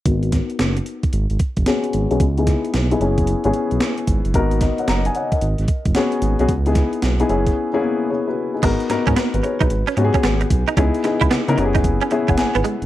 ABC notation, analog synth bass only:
X:1
M:4/4
L:1/16
Q:"Swing 16ths" 1/4=112
K:G#m
V:1 name="Analog synth bass" clef=bass
G,,,3 z F,,,2 z2 G,,, G,,, z F,,, z2 G,,, B,,, | C,,3 z B,,,2 F,,,3 G,,, z B,,, z2 G,,, F,,, | G,,,3 z F,,,2 z2 G,,, G,,, z F,,, z2 G,,, B,,, | C,,3 z B,,,2 F,,,2 z8 |
G,,, z G,, G,, z G,,, z B,,, G,,, z G,, z G,,,2 B,,, z | C,, z2 C,, C, C, F,,,4 z F,,, G,,, G,,, z F,,, |]